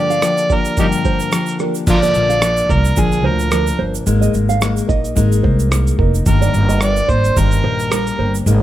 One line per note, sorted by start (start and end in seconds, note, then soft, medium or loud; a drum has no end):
0.00 0.22 G2 medium
0.00 0.77 D3 medium
0.00 0.21 F3 medium
0.00 0.22 A#3 medium
0.00 0.23 D4 medium
0.00 0.23 G4 medium
0.00 0.55 D5 medium
0.10 0.22 F5 medium
0.10 shaker soft
0.21 0.49 F3 medium
0.21 0.50 A#3 medium
0.21 0.49 D4 medium
0.21 0.48 G4 medium
0.21 cross-stick medium
0.21 shaker medium
0.37 shaker soft
0.49 0.77 F3 soft
0.49 0.77 A#3 soft
0.49 0.77 D4 soft
0.49 0.77 G4 soft
0.49 0.90 D5 medium
0.49 kick medium
0.49 shaker soft
0.53 0.79 A#4 medium
0.65 shaker soft
0.77 1.32 G2 medium
0.77 1.87 D3 medium
0.77 1.31 F3 medium
0.77 1.32 A#3 medium
0.77 1.33 D4 medium
0.77 0.86 D#4 medium
0.77 1.33 G4 medium
0.77 0.85 G4 medium
0.77 1.57 A#4 medium
0.77 kick medium
0.77 shaker medium
0.92 shaker soft
1.05 1.19 C5 medium
1.05 kick medium
1.05 shaker soft
1.20 shaker soft
1.31 1.59 F3 soft
1.31 1.60 A#3 medium
1.31 1.59 D4 medium
1.31 1.58 G4 medium
1.31 cross-stick medium
1.31 shaker medium
1.46 shaker soft
1.48 shaker soft
1.59 1.86 F3 soft
1.59 1.86 A#3 soft
1.59 1.86 D4 soft
1.59 1.87 G4 soft
1.59 1.74 A#4 medium
1.59 cross-stick soft
1.59 shaker soft
1.75 shaker soft
1.86 2.10 A#1 medium
1.86 2.41 A#2 medium
1.86 2.42 D3 medium
1.86 2.40 F3 medium
1.86 2.41 A#3 medium
1.86 2.42 D4 medium
1.86 2.43 A#4 medium
1.86 kick loud
1.86 crash medium
1.86 shaker medium
1.90 1.97 F4 medium
1.90 1.99 A#4 medium
1.90 2.73 D5 loud
2.03 2.14 D5 medium
2.03 shaker soft
2.14 2.60 A#1 medium
2.14 shaker soft
2.29 2.41 F5 medium
2.29 shaker soft
2.41 2.69 F3 medium
2.41 2.69 A#3 medium
2.41 2.68 D4 medium
2.41 2.67 A#4 medium
2.41 cross-stick loud
2.41 shaker medium
2.57 shaker soft
2.68 2.92 C2 medium
2.68 2.95 F3 soft
2.68 2.96 A#3 soft
2.68 2.96 D4 soft
2.68 2.96 A#4 soft
2.68 3.01 A#4 medium
2.68 3.09 D5 medium
2.68 kick medium
2.68 shaker soft
2.85 shaker soft
2.96 3.25 A#1 medium
2.96 3.51 A#2 medium
2.96 3.51 D3 medium
2.96 3.50 F3 medium
2.96 3.51 A#3 medium
2.96 3.52 D4 medium
2.96 3.28 G#4 medium
2.96 3.53 A#4 medium
2.96 kick medium
2.96 shaker medium
3.12 shaker soft
3.24 3.70 D2 medium
3.24 3.80 A#4 medium
3.24 3.39 C5 medium
3.39 shaker soft
3.51 4.06 F3 medium
3.51 4.06 A#3 medium
3.51 4.07 D4 medium
3.51 3.66 A#4 medium
3.51 4.07 A#4 medium
3.51 cross-stick loud
3.51 shaker medium
3.67 shaker soft
3.79 4.02 G1 medium
3.79 3.93 C5 medium
3.94 shaker soft
4.06 4.29 G#1 medium
4.06 4.60 G#3 medium
4.06 4.61 A#3 medium
4.06 4.62 D#4 medium
4.06 4.63 A#4 medium
4.06 shaker medium
4.21 4.33 D#5 medium
4.21 shaker soft
4.34 4.80 G#1 medium
4.34 shaker soft
4.49 4.61 F5 medium
4.49 shaker soft
4.49 shaker medium
4.61 4.89 G#3 medium
4.61 4.89 A#3 medium
4.61 4.87 D#4 medium
4.61 4.86 A#4 medium
4.61 cross-stick loud
4.61 shaker medium
4.77 shaker soft
4.77 shaker medium
4.88 5.12 A#1 medium
4.88 5.15 A#3 soft
4.88 5.15 D#4 soft
4.88 5.16 A#4 soft
4.88 5.29 D#5 medium
4.88 kick medium
4.88 shaker soft
5.04 shaker soft
5.15 5.39 G#1 medium
5.15 5.69 G#3 medium
5.15 5.71 A#3 medium
5.15 5.72 D#4 medium
5.15 5.73 A#4 medium
5.15 kick medium
5.15 shaker medium
5.32 shaker soft
5.43 5.89 C2 medium
5.43 5.58 C5 medium
5.43 kick medium
5.59 shaker soft
5.70 5.99 G#3 medium
5.70 5.99 A#3 medium
5.70 5.99 D#4 medium
5.70 5.97 A#4 medium
5.70 cross-stick medium
5.70 shaker medium
5.87 shaker soft
5.98 6.21 F1 medium
5.98 6.26 A#3 soft
5.98 6.27 D#4 soft
5.98 6.13 A#4 medium
5.98 6.26 A#4 medium
5.98 kick medium
6.14 shaker soft
6.26 6.49 G1 medium
6.26 6.81 G2 medium
6.26 6.85 D#3 medium
6.26 6.79 G3 medium
6.26 6.81 A#3 medium
6.26 6.81 D4 medium
6.26 6.85 A#4 medium
6.26 6.83 A#4 medium
6.26 kick loud
6.26 shaker medium
6.42 6.53 D5 medium
6.42 shaker soft
6.54 6.99 G1 medium
6.54 shaker soft
6.69 6.81 D#5 medium
6.69 shaker medium
6.69 shaker soft
6.81 7.09 G3 medium
6.81 7.09 A#3 medium
6.81 7.08 D4 medium
6.81 7.07 A#4 medium
6.81 7.11 D5 medium
6.81 cross-stick loud
6.81 shaker medium
6.96 shaker soft
7.08 7.31 G#1 medium
7.08 7.36 G3 soft
7.08 7.36 A#3 soft
7.08 7.37 D4 soft
7.08 7.36 A#4 soft
7.08 7.40 C5 medium
7.08 7.49 D5 medium
7.08 kick medium
7.08 shaker soft
7.24 shaker medium
7.24 shaker soft
7.36 7.59 G1 medium
7.36 7.91 G2 medium
7.36 7.96 D#3 medium
7.36 7.90 G3 medium
7.36 7.92 A#3 medium
7.36 7.92 D4 medium
7.36 7.94 A#4 medium
7.36 7.93 A#4 medium
7.36 kick medium
7.36 shaker medium
7.51 shaker soft
7.64 8.09 A#1 medium
7.64 7.78 C5 medium
7.79 shaker soft
7.91 8.19 G3 medium
7.91 8.20 A#3 medium
7.91 8.19 D4 medium
7.91 8.06 A#4 medium
7.91 8.18 A#4 medium
7.91 8.33 A#4 medium
7.91 cross-stick loud
7.91 shaker medium
8.07 shaker soft
8.19 8.42 G1 medium
8.19 8.46 G3 soft
8.19 8.46 A#3 soft
8.19 8.47 D4 soft
8.19 8.46 A#4 soft
8.19 8.33 C5 medium
8.35 shaker soft
8.46 8.62 G#1 loud
8.46 8.62 G#3 medium
8.46 8.62 A#3 medium
8.46 8.62 D#4 medium
8.46 8.62 A#4 medium
8.46 shaker medium